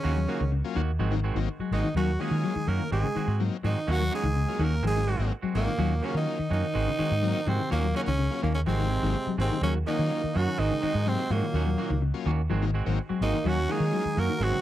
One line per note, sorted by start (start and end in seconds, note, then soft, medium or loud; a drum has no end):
0.00 0.52 C#3 medium
0.00 0.18 D#3 medium
0.00 0.18 A#3 medium
0.00 0.52 C#4 medium
0.00 0.18 C#4 medium
0.00 0.18 F#4 medium
0.04 0.25 D#2 loud
0.04 0.13 F#3 medium
0.04 0.13 A#3 medium
0.04 0.13 C#4 medium
0.04 0.13 F4 medium
0.16 0.29 F#3 medium
0.28 0.43 D#3 medium
0.28 0.41 F#3 medium
0.28 0.41 A#3 medium
0.28 0.43 A#3 medium
0.28 0.41 C#4 medium
0.28 0.43 C#4 medium
0.28 0.41 F4 medium
0.28 0.43 F#4 medium
0.41 0.61 C#2 medium
0.41 0.47 D#3 medium
0.52 0.65 C#3 medium
0.64 0.81 F#3 loud
0.64 0.82 A#3 medium
0.64 0.82 C#4 medium
0.64 0.82 F4 loud
0.75 0.97 D#2 medium
0.75 0.88 D#3 medium
0.75 0.90 D#3 medium
0.75 0.90 A#3 medium
0.75 0.91 F#4 medium
0.99 1.30 G#1 loud
0.99 1.14 D#3 medium
0.99 1.06 F3 medium
0.99 1.14 G#3 medium
0.99 1.14 C4 medium
0.99 1.15 F#4 medium
1.11 1.24 D#3 medium
1.11 1.20 F#3 medium
1.11 1.20 A#3 medium
1.11 1.20 C4 medium
1.11 1.20 D#4 medium
1.24 1.38 D#3 medium
1.24 1.38 G#3 medium
1.24 1.39 C4 medium
1.24 1.39 F#4 medium
1.35 1.46 G#1 medium
1.35 1.48 D#3 medium
1.35 1.49 F#3 loud
1.35 1.49 A#3 medium
1.35 1.49 C4 medium
1.35 1.49 D#4 loud
1.59 1.73 F#3 medium
1.59 1.72 G#3 soft
1.59 1.72 F#4 soft
1.59 muted fingered electric bass stroke soft
1.71 1.82 G#1 medium
1.71 1.87 D#3 medium
1.71 1.95 D#3 medium
1.71 1.90 F#3 medium
1.71 1.87 G#3 medium
1.71 1.90 A#3 medium
1.71 1.90 C4 medium
1.71 1.87 C4 medium
1.71 1.90 D#4 medium
1.71 1.95 D#4 medium
1.71 1.87 F#4 medium
1.84 1.90 D#3 medium
1.95 2.16 D#2 medium
1.95 2.11 D#3 medium
1.95 2.09 F#3 medium
1.95 2.21 F#3 medium
1.95 2.11 A#3 medium
1.95 2.11 C#4 medium
1.95 2.22 F#4 medium
1.95 2.11 F#4 medium
2.19 2.33 D#3 medium
2.19 2.34 D#3 medium
2.19 2.54 F#3 medium
2.19 2.69 G#3 medium
2.19 2.55 A#3 medium
2.19 2.35 A#3 medium
2.19 2.54 C#4 medium
2.19 2.35 C#4 medium
2.19 2.55 F4 medium
2.19 2.35 F#4 medium
2.19 2.70 G#4 medium
2.31 2.42 D#3 medium
2.44 2.50 F#3 medium
2.55 2.68 D#3 medium
2.55 muted fingered electric bass stroke soft
2.67 2.78 F#2 medium
2.67 2.82 D#3 medium
2.67 2.90 A#3 medium
2.67 2.82 A#3 medium
2.67 2.83 C#4 medium
2.67 2.83 F#4 medium
2.67 2.92 A#4 loud
2.79 2.92 D#3 medium
2.90 3.02 G#1 loud
2.90 3.06 D#3 medium
2.90 3.36 G#3 medium
2.90 3.07 G#3 medium
2.90 3.07 C4 medium
2.90 3.07 F#4 medium
2.90 3.37 G#4 loud
3.03 3.10 C#3 medium
3.15 3.28 D#3 medium
3.15 3.28 G#3 medium
3.15 3.27 C4 medium
3.15 3.27 F#4 medium
3.15 muted fingered electric bass stroke soft
3.28 3.48 G#2 loud
3.28 3.43 G#3 soft
3.28 3.43 C4 soft
3.28 3.42 F#4 medium
3.40 3.57 F#3 medium
3.40 3.53 F#3 medium
3.40 3.57 A#3 medium
3.40 3.57 C4 medium
3.40 3.57 D#4 medium
3.63 3.74 G#2 medium
3.63 3.78 D#3 medium
3.63 3.91 D#3 medium
3.63 3.70 F3 medium
3.63 3.79 G#3 medium
3.63 3.79 C4 medium
3.63 3.93 D#4 medium
3.63 3.79 F#4 medium
3.87 4.09 D#2 loud
3.87 4.02 D#3 medium
3.87 3.97 F#3 medium
3.87 4.13 F#3 medium
3.87 4.02 A#3 medium
3.87 3.97 A#3 medium
3.87 4.02 C#4 medium
3.87 3.97 C#4 medium
3.87 3.97 F4 medium
3.87 4.03 F#4 medium
3.87 4.14 F#4 loud
4.00 4.13 F#3 medium
4.11 4.26 D#3 medium
4.11 4.25 F#3 medium
4.11 4.64 G#3 medium
4.11 4.26 A#3 medium
4.11 4.25 A#3 medium
4.11 4.27 C#4 medium
4.11 4.25 C#4 medium
4.11 4.25 F4 medium
4.11 4.26 F#4 medium
4.11 4.65 G#4 loud
4.24 4.44 C#2 medium
4.24 4.30 D#3 medium
4.36 4.49 C#3 medium
4.48 4.65 F#3 medium
4.48 4.65 A#3 medium
4.48 4.65 C#4 medium
4.48 4.65 F4 medium
4.59 4.80 D#2 medium
4.59 4.74 D#3 medium
4.59 4.73 D#3 medium
4.59 4.74 A#3 medium
4.59 4.85 A#3 medium
4.59 4.74 C#4 medium
4.59 4.74 F#4 medium
4.64 4.86 A#4 medium
4.83 5.14 G#1 loud
4.83 4.98 D#3 medium
4.83 4.90 F3 medium
4.83 4.98 G#3 medium
4.83 5.30 G#3 medium
4.83 4.98 C4 medium
4.83 muted clean electric guitar stroke medium
4.87 5.30 G#4 loud
4.96 5.09 D#3 medium
4.96 5.05 F#3 medium
4.96 5.05 A#3 medium
4.96 5.05 C4 medium
4.96 5.05 D#4 medium
5.06 5.19 D#3 medium
5.06 5.19 G#3 medium
5.06 5.18 C4 medium
5.06 5.18 F#4 medium
5.19 5.30 G#1 loud
5.19 5.33 F#3 medium
5.19 5.34 G#3 soft
5.19 5.33 A#3 medium
5.19 5.34 C4 soft
5.19 5.33 C4 medium
5.19 5.33 D#4 loud
5.19 5.34 F#4 soft
5.19 muted clean electric guitar stroke medium
5.42 5.56 F#3 medium
5.42 5.54 G#3 soft
5.42 5.54 C4 soft
5.42 5.54 F#4 soft
5.42 muted fingered electric bass stroke soft
5.54 5.66 G#1 medium
5.54 6.05 A#2 medium
5.54 5.70 D#3 medium
5.54 5.73 F#3 medium
5.54 5.70 G#3 medium
5.54 5.73 A#3 medium
5.54 6.07 A#3 medium
5.54 5.70 C4 medium
5.54 5.73 C4 medium
5.54 5.73 D#4 medium
5.54 5.70 F#4 medium
5.67 5.74 D#3 medium
5.78 6.00 D#2 medium
5.78 5.93 D#3 medium
5.78 5.92 F#3 medium
5.78 5.94 A#3 medium
5.78 5.94 C#4 medium
5.78 5.94 F#4 medium
6.02 6.15 C#3 medium
6.02 6.17 D#3 medium
6.02 6.38 F#3 medium
6.02 6.18 A#3 medium
6.02 6.38 A#3 medium
6.02 6.18 C#4 medium
6.02 6.38 C#4 medium
6.02 6.16 C#4 medium
6.02 6.38 F4 medium
6.02 6.18 F#4 medium
6.02 muted clean electric guitar stroke medium
6.15 6.25 D#3 medium
6.15 6.49 D#3 medium
6.15 6.50 D#4 medium
6.39 6.52 D#3 medium
6.39 muted fingered electric bass stroke soft
6.50 6.62 F#2 medium
6.50 6.65 D#3 medium
6.50 7.50 D#3 medium
6.50 6.66 A#3 medium
6.50 6.66 C#4 medium
6.50 7.50 D#4 loud
6.50 6.66 F#4 medium
6.63 6.76 D#3 medium
6.74 6.86 G#1 loud
6.74 6.89 D#3 medium
6.74 6.89 G#3 medium
6.74 6.90 C4 medium
6.74 6.90 F#4 medium
6.87 6.94 C#3 medium
6.98 7.12 D#3 medium
6.98 7.13 G#3 medium
6.98 7.14 C4 medium
6.98 7.14 F#4 medium
6.98 muted fingered electric bass stroke soft
7.11 7.32 G#2 medium
7.22 7.35 F#3 medium
7.22 7.41 F#3 medium
7.22 7.41 A#3 medium
7.22 7.41 C4 medium
7.22 7.41 D#4 loud
7.46 7.58 G#2 medium
7.46 7.71 C3 medium
7.46 7.61 D#3 medium
7.46 7.53 F3 medium
7.46 7.62 G#3 medium
7.46 7.62 C4 medium
7.46 7.71 C4 medium
7.46 7.62 F#4 medium
7.58 7.71 D#3 medium
7.70 7.92 D#2 medium
7.70 7.94 A#2 medium
7.70 7.86 D#3 medium
7.70 7.80 F#3 medium
7.70 7.80 A#3 medium
7.70 7.86 A#3 medium
7.70 7.94 A#3 loud
7.70 7.80 C#4 medium
7.70 7.86 C#4 medium
7.70 7.80 F4 medium
7.70 7.86 F#4 medium
7.83 7.96 F#3 medium
7.95 8.01 C#3 medium
7.95 8.10 D#3 medium
7.95 8.09 F#3 medium
7.95 8.10 A#3 medium
7.95 8.09 A#3 medium
7.95 8.10 C#4 medium
7.95 8.08 C#4 medium
7.95 8.01 C#4 medium
7.95 8.09 F4 medium
7.95 8.10 F#4 medium
8.06 8.28 C#2 medium
8.06 8.41 C#3 medium
8.06 8.13 D#3 medium
8.06 8.41 C#4 medium
8.18 8.31 C#3 medium
8.30 8.48 F#3 medium
8.30 8.48 A#3 medium
8.30 8.49 C#4 medium
8.30 8.48 F4 medium
8.42 8.64 D#2 loud
8.42 8.54 A#2 medium
8.42 8.57 D#3 medium
8.42 8.56 D#3 medium
8.42 8.58 A#3 medium
8.42 8.54 A#3 medium
8.42 8.58 C#4 medium
8.42 muted clean electric guitar stroke medium
8.54 8.60 C#3 medium
8.54 8.60 C#4 medium
8.66 8.98 G#1 loud
8.66 9.35 C3 medium
8.66 8.81 D#3 medium
8.66 8.73 F3 medium
8.66 8.81 G#3 medium
8.66 9.36 G#3 medium
8.66 8.81 C4 medium
8.66 9.35 C4 loud
8.66 8.81 F#4 medium
8.79 8.92 D#3 medium
8.79 8.88 F#3 medium
8.79 8.88 A#3 medium
8.79 8.88 C4 medium
8.79 8.88 D#4 medium
8.90 9.03 D#3 medium
8.90 9.02 G#3 medium
8.90 9.01 C4 medium
9.02 9.13 G#1 medium
9.02 9.16 D#3 medium
9.02 9.16 F#3 medium
9.02 9.18 G#3 soft
9.02 9.16 A#3 medium
9.02 9.17 C4 soft
9.02 9.16 C4 medium
9.02 9.17 D#4 medium
9.02 9.17 F#4 soft
9.27 9.40 F#3 medium
9.27 muted fingered electric bass stroke soft
9.38 9.49 G#1 loud
9.38 9.61 C3 medium
9.38 9.53 D#3 medium
9.38 9.57 F#3 medium
9.38 9.53 G#3 medium
9.38 9.63 G#3 medium
9.38 9.57 A#3 medium
9.38 9.53 C4 medium
9.38 9.57 C4 medium
9.38 9.62 C4 medium
9.38 9.58 D#4 medium
9.38 9.53 F#4 medium
9.52 9.58 D#3 medium
9.61 9.83 D#2 medium
9.61 9.74 C#3 medium
9.61 9.77 D#3 medium
9.61 9.76 F#3 medium
9.61 9.75 F#3 medium
9.61 9.77 A#3 medium
9.61 9.74 C#4 medium
9.61 9.78 F#4 medium
9.61 muted clean electric guitar stroke medium
9.86 10.01 D#3 medium
9.86 10.37 D#3 medium
9.86 10.00 D#3 medium
9.86 10.22 F#3 medium
9.86 10.01 A#3 medium
9.86 10.22 A#3 medium
9.86 10.38 A#3 medium
9.86 10.01 C#4 medium
9.86 10.22 C#4 medium
9.86 10.38 D#4 loud
9.86 10.22 F4 medium
9.86 10.02 F#4 medium
9.99 10.09 D#3 medium
10.11 muted clean electric guitar stroke medium
10.24 10.36 D#3 medium
10.24 muted fingered electric bass stroke soft
10.34 10.46 F#2 medium
10.34 10.49 D#3 medium
10.34 10.61 F#3 medium
10.34 10.49 A#3 medium
10.34 10.49 C#4 medium
10.34 10.62 C#4 medium
10.34 10.50 F#4 medium
10.34 10.60 F#4 loud
10.48 10.60 D#3 medium
10.58 10.69 G#1 loud
10.58 10.73 D#3 medium
10.58 11.09 D#3 medium
10.58 10.73 G#3 medium
10.58 11.08 G#3 medium
10.58 10.73 C4 medium
10.58 11.10 D#4 loud
10.58 10.73 F#4 medium
10.71 10.77 C#3 medium
10.82 10.94 D#3 medium
10.82 10.95 D#3 medium
10.82 10.94 G#3 medium
10.82 10.94 C4 medium
10.82 10.93 F#4 medium
10.82 muted fingered electric bass stroke soft
10.94 11.15 G#2 loud
10.94 11.09 G#3 soft
10.94 11.09 F#4 soft
10.94 muted clean electric guitar stroke soft
11.06 11.33 C3 medium
11.06 11.24 F#3 medium
11.06 11.19 F#3 medium
11.06 11.33 G#3 medium
11.06 11.24 A#3 medium
11.06 11.24 C4 medium
11.06 11.33 C4 loud
11.06 11.24 D#4 medium
11.18 11.29 G#3 soft
11.18 11.30 C4 soft
11.18 11.30 F#4 soft
11.30 11.41 G#2 medium
11.30 12.03 A#2 medium
11.30 11.45 D#3 medium
11.30 11.36 F3 medium
11.30 12.03 F#3 medium
11.30 11.45 G#3 medium
11.30 12.03 A#3 medium
11.30 11.45 C4 medium
11.30 11.45 F#4 medium
11.42 11.55 D#3 medium
11.54 11.75 D#2 loud
11.54 11.69 D#3 medium
11.54 11.63 F#3 medium
11.54 11.63 A#3 medium
11.54 11.63 C#4 medium
11.54 11.69 C#4 medium
11.54 11.63 F4 medium
11.54 11.69 F#4 medium
11.54 muted clean electric guitar stroke medium
11.66 11.79 F#3 medium
11.78 11.92 D#3 medium
11.78 11.91 F#3 medium
11.78 11.91 A#3 medium
11.78 11.93 A#3 medium
11.78 11.91 C#4 medium
11.78 11.91 F4 medium
11.78 11.93 F#4 medium
11.90 12.11 C#2 medium
11.90 11.97 D#3 medium
12.02 12.15 C#3 medium
12.14 12.31 F#3 medium
12.14 12.31 A#3 medium
12.14 12.31 C#4 medium
12.14 12.31 F4 loud
12.26 12.47 D#2 medium
12.26 12.38 D#3 medium
12.26 12.40 D#3 medium
12.26 12.41 A#3 medium
12.26 12.41 C#4 medium
12.26 12.41 F#4 medium
12.50 12.81 G#1 loud
12.50 12.64 D#3 medium
12.50 12.56 F3 medium
12.50 12.64 G#3 medium
12.50 12.65 C4 medium
12.50 12.65 F#4 medium
12.62 12.75 D#3 medium
12.62 12.71 F#3 medium
12.62 12.71 A#3 medium
12.62 12.71 C4 medium
12.62 12.71 D#4 medium
12.74 12.86 G#3 medium
12.74 12.85 C4 medium
12.74 12.84 F#4 medium
12.85 12.97 G#1 medium
12.85 12.99 D#3 medium
12.85 12.99 F#3 medium
12.85 13.01 G#3 soft
12.85 12.99 A#3 medium
12.85 12.99 C4 medium
12.85 13.00 C4 medium
12.85 12.99 D#4 loud
12.85 13.00 F#4 medium
13.09 13.22 F#3 medium
13.09 13.21 G#3 soft
13.09 13.21 C4 soft
13.09 13.21 F#4 soft
13.09 muted fingered electric bass stroke soft
13.21 13.32 G#1 loud
13.21 13.36 D#3 medium
13.21 13.48 D#3 medium
13.21 13.39 F#3 medium
13.21 13.36 G#3 medium
13.21 13.39 A#3 medium
13.21 13.49 A#3 medium
13.21 13.39 C4 medium
13.21 13.37 C4 medium
13.21 13.39 D#4 medium
13.21 13.49 D#4 loud
13.21 13.37 F#4 medium
13.33 13.40 D#3 medium
13.44 13.66 D#2 medium
13.44 13.60 D#3 medium
13.44 13.57 F#3 medium
13.44 13.72 F#3 medium
13.44 13.60 A#3 medium
13.44 13.60 C#4 medium
13.44 13.74 C#4 medium
13.44 13.60 F#4 medium
13.44 13.73 F#4 loud
13.69 13.83 D#3 medium
13.69 13.81 D#3 medium
13.69 14.04 F#3 medium
13.69 14.20 G#3 medium
13.69 13.84 A#3 medium
13.69 14.05 A#3 medium
13.69 13.84 C#4 medium
13.69 14.05 C#4 medium
13.69 14.05 F4 medium
13.69 13.84 F#4 medium
13.69 14.21 G#4 loud
13.73 14.22 D#4 medium
13.80 13.91 D#3 medium
13.93 13.99 F#3 medium
14.04 14.17 D#3 medium
14.04 muted fingered electric bass stroke soft
14.17 14.28 F#2 medium
14.17 14.31 D#3 medium
14.17 14.32 A#3 medium
14.17 14.44 A#3 medium
14.17 14.32 C#4 medium
14.17 14.32 F#4 medium
14.17 14.43 F#4 medium
14.17 14.45 A#4 loud
14.29 14.42 D#3 medium
14.40 14.51 G#1 loud
14.40 14.55 D#3 medium
14.40 14.61 F#3 medium
14.40 14.56 G#3 medium
14.40 14.56 C4 medium
14.40 14.61 C4 medium
14.40 14.56 F#4 medium
14.40 14.61 F#4 loud
14.52 14.59 C#3 medium